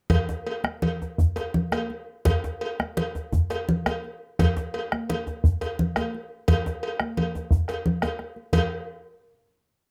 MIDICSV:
0, 0, Header, 1, 4, 480
1, 0, Start_track
1, 0, Tempo, 356083
1, 136, Time_signature, 12, 3, 24, 8
1, 7335, Tempo, 345026
1, 10695, Tempo, 335946
1, 13625, End_track
2, 0, Start_track
2, 0, Title_t, "Bombo"
2, 132, Note_on_c, 9, 37, 31
2, 132, Note_on_c, 9, 43, 91
2, 267, Note_off_c, 9, 37, 0
2, 267, Note_off_c, 9, 43, 0
2, 870, Note_on_c, 9, 37, 70
2, 1004, Note_off_c, 9, 37, 0
2, 1596, Note_on_c, 9, 43, 86
2, 1730, Note_off_c, 9, 43, 0
2, 2322, Note_on_c, 9, 37, 56
2, 2457, Note_off_c, 9, 37, 0
2, 3047, Note_on_c, 9, 37, 25
2, 3047, Note_on_c, 9, 43, 82
2, 3181, Note_off_c, 9, 37, 0
2, 3181, Note_off_c, 9, 43, 0
2, 3773, Note_on_c, 9, 37, 58
2, 3907, Note_off_c, 9, 37, 0
2, 4493, Note_on_c, 9, 43, 83
2, 4628, Note_off_c, 9, 43, 0
2, 5205, Note_on_c, 9, 37, 62
2, 5340, Note_off_c, 9, 37, 0
2, 5920, Note_on_c, 9, 37, 28
2, 5920, Note_on_c, 9, 43, 90
2, 6055, Note_off_c, 9, 37, 0
2, 6055, Note_off_c, 9, 43, 0
2, 6633, Note_on_c, 9, 37, 68
2, 6768, Note_off_c, 9, 37, 0
2, 7331, Note_on_c, 9, 43, 87
2, 7470, Note_off_c, 9, 43, 0
2, 8056, Note_on_c, 9, 37, 63
2, 8195, Note_off_c, 9, 37, 0
2, 8784, Note_on_c, 9, 43, 93
2, 8923, Note_off_c, 9, 43, 0
2, 9497, Note_on_c, 9, 37, 71
2, 9636, Note_off_c, 9, 37, 0
2, 10207, Note_on_c, 9, 43, 90
2, 10346, Note_off_c, 9, 43, 0
2, 10450, Note_on_c, 9, 37, 29
2, 10589, Note_off_c, 9, 37, 0
2, 10931, Note_on_c, 9, 37, 60
2, 11074, Note_off_c, 9, 37, 0
2, 11171, Note_on_c, 9, 37, 26
2, 11314, Note_off_c, 9, 37, 0
2, 11652, Note_on_c, 9, 43, 76
2, 11795, Note_off_c, 9, 43, 0
2, 13625, End_track
3, 0, Start_track
3, 0, Title_t, "Djembe"
3, 137, Note_on_c, 9, 62, 20
3, 137, Note_on_c, 9, 64, 62
3, 272, Note_off_c, 9, 62, 0
3, 272, Note_off_c, 9, 64, 0
3, 388, Note_on_c, 9, 62, 50
3, 388, Note_on_c, 9, 63, 47
3, 523, Note_off_c, 9, 62, 0
3, 523, Note_off_c, 9, 63, 0
3, 884, Note_on_c, 9, 62, 20
3, 1019, Note_off_c, 9, 62, 0
3, 1370, Note_on_c, 9, 63, 50
3, 1505, Note_off_c, 9, 63, 0
3, 1603, Note_on_c, 9, 64, 63
3, 1737, Note_off_c, 9, 64, 0
3, 1845, Note_on_c, 9, 62, 50
3, 1980, Note_off_c, 9, 62, 0
3, 2326, Note_on_c, 9, 63, 45
3, 2461, Note_off_c, 9, 63, 0
3, 3048, Note_on_c, 9, 62, 21
3, 3048, Note_on_c, 9, 64, 65
3, 3183, Note_off_c, 9, 62, 0
3, 3183, Note_off_c, 9, 64, 0
3, 3289, Note_on_c, 9, 62, 47
3, 3289, Note_on_c, 9, 63, 51
3, 3424, Note_off_c, 9, 62, 0
3, 3424, Note_off_c, 9, 63, 0
3, 4248, Note_on_c, 9, 63, 53
3, 4383, Note_off_c, 9, 63, 0
3, 4482, Note_on_c, 9, 64, 66
3, 4616, Note_off_c, 9, 64, 0
3, 4719, Note_on_c, 9, 62, 50
3, 4854, Note_off_c, 9, 62, 0
3, 5204, Note_on_c, 9, 63, 51
3, 5339, Note_off_c, 9, 63, 0
3, 5925, Note_on_c, 9, 62, 20
3, 5925, Note_on_c, 9, 64, 67
3, 6060, Note_off_c, 9, 62, 0
3, 6060, Note_off_c, 9, 64, 0
3, 6155, Note_on_c, 9, 62, 50
3, 6155, Note_on_c, 9, 63, 51
3, 6290, Note_off_c, 9, 62, 0
3, 6290, Note_off_c, 9, 63, 0
3, 7102, Note_on_c, 9, 63, 51
3, 7236, Note_off_c, 9, 63, 0
3, 7344, Note_on_c, 9, 64, 68
3, 7483, Note_off_c, 9, 64, 0
3, 7580, Note_on_c, 9, 62, 50
3, 7719, Note_off_c, 9, 62, 0
3, 8070, Note_on_c, 9, 63, 51
3, 8209, Note_off_c, 9, 63, 0
3, 8794, Note_on_c, 9, 64, 66
3, 8933, Note_off_c, 9, 64, 0
3, 9034, Note_on_c, 9, 62, 47
3, 9034, Note_on_c, 9, 63, 49
3, 9173, Note_off_c, 9, 62, 0
3, 9173, Note_off_c, 9, 63, 0
3, 9993, Note_on_c, 9, 63, 54
3, 10132, Note_off_c, 9, 63, 0
3, 10225, Note_on_c, 9, 64, 68
3, 10364, Note_off_c, 9, 64, 0
3, 10471, Note_on_c, 9, 62, 47
3, 10610, Note_off_c, 9, 62, 0
3, 10950, Note_on_c, 9, 63, 52
3, 11093, Note_off_c, 9, 63, 0
3, 11661, Note_on_c, 9, 64, 72
3, 11803, Note_off_c, 9, 64, 0
3, 13625, End_track
4, 0, Start_track
4, 0, Title_t, "Drums"
4, 132, Note_on_c, 9, 64, 71
4, 133, Note_on_c, 9, 56, 54
4, 267, Note_off_c, 9, 64, 0
4, 268, Note_off_c, 9, 56, 0
4, 627, Note_on_c, 9, 56, 40
4, 628, Note_on_c, 9, 63, 24
4, 762, Note_off_c, 9, 56, 0
4, 763, Note_off_c, 9, 63, 0
4, 862, Note_on_c, 9, 63, 52
4, 997, Note_off_c, 9, 63, 0
4, 1108, Note_on_c, 9, 64, 67
4, 1113, Note_on_c, 9, 56, 42
4, 1243, Note_off_c, 9, 64, 0
4, 1248, Note_off_c, 9, 56, 0
4, 1832, Note_on_c, 9, 63, 21
4, 1833, Note_on_c, 9, 56, 39
4, 1967, Note_off_c, 9, 63, 0
4, 1968, Note_off_c, 9, 56, 0
4, 2080, Note_on_c, 9, 64, 66
4, 2215, Note_off_c, 9, 64, 0
4, 2317, Note_on_c, 9, 63, 52
4, 2326, Note_on_c, 9, 56, 47
4, 2451, Note_off_c, 9, 63, 0
4, 2461, Note_off_c, 9, 56, 0
4, 2562, Note_on_c, 9, 63, 20
4, 2697, Note_off_c, 9, 63, 0
4, 3036, Note_on_c, 9, 64, 66
4, 3042, Note_on_c, 9, 56, 53
4, 3171, Note_off_c, 9, 64, 0
4, 3177, Note_off_c, 9, 56, 0
4, 3521, Note_on_c, 9, 56, 42
4, 3531, Note_on_c, 9, 63, 21
4, 3656, Note_off_c, 9, 56, 0
4, 3666, Note_off_c, 9, 63, 0
4, 3769, Note_on_c, 9, 63, 52
4, 3904, Note_off_c, 9, 63, 0
4, 4004, Note_on_c, 9, 56, 42
4, 4006, Note_on_c, 9, 64, 65
4, 4139, Note_off_c, 9, 56, 0
4, 4141, Note_off_c, 9, 64, 0
4, 4725, Note_on_c, 9, 56, 42
4, 4731, Note_on_c, 9, 63, 21
4, 4860, Note_off_c, 9, 56, 0
4, 4865, Note_off_c, 9, 63, 0
4, 4968, Note_on_c, 9, 64, 66
4, 5103, Note_off_c, 9, 64, 0
4, 5206, Note_on_c, 9, 56, 43
4, 5209, Note_on_c, 9, 63, 47
4, 5341, Note_off_c, 9, 56, 0
4, 5343, Note_off_c, 9, 63, 0
4, 5449, Note_on_c, 9, 63, 19
4, 5583, Note_off_c, 9, 63, 0
4, 5924, Note_on_c, 9, 56, 57
4, 5929, Note_on_c, 9, 64, 66
4, 6059, Note_off_c, 9, 56, 0
4, 6063, Note_off_c, 9, 64, 0
4, 6390, Note_on_c, 9, 56, 41
4, 6404, Note_on_c, 9, 63, 22
4, 6525, Note_off_c, 9, 56, 0
4, 6538, Note_off_c, 9, 63, 0
4, 6639, Note_on_c, 9, 63, 47
4, 6774, Note_off_c, 9, 63, 0
4, 6868, Note_on_c, 9, 56, 45
4, 6873, Note_on_c, 9, 64, 61
4, 7003, Note_off_c, 9, 56, 0
4, 7008, Note_off_c, 9, 64, 0
4, 7574, Note_on_c, 9, 56, 40
4, 7583, Note_on_c, 9, 63, 19
4, 7713, Note_off_c, 9, 56, 0
4, 7722, Note_off_c, 9, 63, 0
4, 7823, Note_on_c, 9, 64, 64
4, 7962, Note_off_c, 9, 64, 0
4, 8061, Note_on_c, 9, 56, 45
4, 8068, Note_on_c, 9, 63, 50
4, 8200, Note_off_c, 9, 56, 0
4, 8207, Note_off_c, 9, 63, 0
4, 8313, Note_on_c, 9, 63, 21
4, 8452, Note_off_c, 9, 63, 0
4, 8779, Note_on_c, 9, 56, 64
4, 8784, Note_on_c, 9, 64, 63
4, 8918, Note_off_c, 9, 56, 0
4, 8923, Note_off_c, 9, 64, 0
4, 9267, Note_on_c, 9, 56, 43
4, 9406, Note_off_c, 9, 56, 0
4, 9507, Note_on_c, 9, 63, 48
4, 9646, Note_off_c, 9, 63, 0
4, 9744, Note_on_c, 9, 64, 57
4, 9746, Note_on_c, 9, 56, 44
4, 9883, Note_off_c, 9, 64, 0
4, 9885, Note_off_c, 9, 56, 0
4, 10460, Note_on_c, 9, 56, 40
4, 10464, Note_on_c, 9, 63, 19
4, 10599, Note_off_c, 9, 56, 0
4, 10603, Note_off_c, 9, 63, 0
4, 10695, Note_on_c, 9, 63, 22
4, 10695, Note_on_c, 9, 64, 67
4, 10838, Note_off_c, 9, 63, 0
4, 10838, Note_off_c, 9, 64, 0
4, 10937, Note_on_c, 9, 63, 51
4, 10939, Note_on_c, 9, 56, 44
4, 11080, Note_off_c, 9, 63, 0
4, 11082, Note_off_c, 9, 56, 0
4, 11173, Note_on_c, 9, 63, 19
4, 11316, Note_off_c, 9, 63, 0
4, 11418, Note_on_c, 9, 63, 19
4, 11560, Note_off_c, 9, 63, 0
4, 11655, Note_on_c, 9, 64, 70
4, 11659, Note_on_c, 9, 56, 75
4, 11798, Note_off_c, 9, 64, 0
4, 11802, Note_off_c, 9, 56, 0
4, 13625, End_track
0, 0, End_of_file